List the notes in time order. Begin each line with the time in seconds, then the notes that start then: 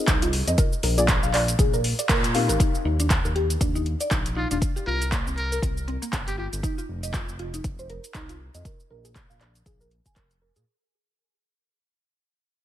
Already playing: C4 D#4 F4 G#4 D#5
0.08 C2 D#4, kick, clap, closed hi-hat, cabasa
0.22 F4, closed hi-hat, cabasa
0.33 open hi-hat
0.47 F2 D#5, closed hi-hat, cabasa
0.58 A#4, kick, closed hi-hat, cabasa
0.73 cabasa
0.83 A#1 A#4, open hi-hat
0.98 A#3 D4 F4 G#4 D5, closed hi-hat, cabasa
1.08 kick, clap, closed hi-hat, cabasa
1.23 A#1 F5, cabasa
1.34 D5, clap, open hi-hat
1.48 closed hi-hat, cabasa
1.59 A#1 G#4, kick, closed hi-hat, cabasa
1.74 A#4, cabasa
1.84 open hi-hat
1.99 D5, closed hi-hat, cabasa
2.09 A#2 A#4, kick, clap, closed hi-hat, cabasa
2.24 closed hi-hat, cabasa
2.34 C4 D#4 G4 A#4 F5, open hi-hat
2.49 G#1 A#4, closed hi-hat, cabasa
2.60 D#4, kick, closed hi-hat, cabasa
2.75 cabasa
2.85 D#2 D#4
3.00 D4, closed hi-hat, cabasa
3.10 kick, clap, closed hi-hat, cabasa
3.25 D#2 A#4, cabasa
3.36 G4, closed hi-hat
3.50 closed hi-hat, cabasa
3.61 D#2 D4, kick, closed hi-hat, cabasa
3.75 D#4, cabasa
3.86 closed hi-hat
4.00 D5, closed hi-hat, cabasa
4.11 A#1 D#4, kick, clap, closed hi-hat, cabasa
4.26 closed hi-hat, cabasa
4.36 D#4 F4
4.51 D#1 D4 F4, closed hi-hat, cabasa
4.62 kick, closed hi-hat, cabasa
4.76 G4, cabasa
4.87 C2 F4 A#4
5.02 closed hi-hat, cabasa
5.12 A#3, kick, clap, closed hi-hat, cabasa
5.26 C2 C4, cabasa
5.37 A#4, closed hi-hat
5.52 A#4, closed hi-hat, cabasa
5.62 C2 C4, kick, closed hi-hat, cabasa
5.78 cabasa
5.88 C4, closed hi-hat
6.02 A#3, closed hi-hat, cabasa
6.13 G1, kick, clap, closed hi-hat, cabasa
6.27 G4, closed hi-hat, cabasa
6.38 F4 G4
6.53 G1, closed hi-hat, cabasa
6.63 D#4, kick, closed hi-hat, cabasa
6.78 F4, cabasa
6.89 F1
7.03 D#5, closed hi-hat, cabasa
7.14 F4, kick, clap, closed hi-hat, cabasa
7.28 F1, cabasa
7.39 F4, closed hi-hat
7.54 D#4, closed hi-hat, cabasa
7.64 F1, kick, closed hi-hat, cabasa
7.79 C5, cabasa
7.90 A#4, closed hi-hat
8.04 closed hi-hat, cabasa
8.15 C2 D#4, kick, clap, closed hi-hat, cabasa
8.29 F4, closed hi-hat, cabasa
8.54 F2 D#5, closed hi-hat, cabasa
8.65 A#4, kick, closed hi-hat, cabasa
8.80 cabasa
8.90 A#1 A#4
9.05 G#4, closed hi-hat, cabasa
9.16 kick, clap, closed hi-hat, cabasa
9.30 A#1 F5, cabasa
9.41 D5, clap, closed hi-hat
9.55 closed hi-hat, cabasa
9.66 A#1 G#4, kick, closed hi-hat, cabasa
9.81 A#4, cabasa
9.91 closed hi-hat
10.06 G#5, kick, closed hi-hat, cabasa
10.16 F1 A#4, kick, clap, closed hi-hat, cabasa
10.31 closed hi-hat, cabasa
10.42 A#4
10.56 A#2 G#4, closed hi-hat, cabasa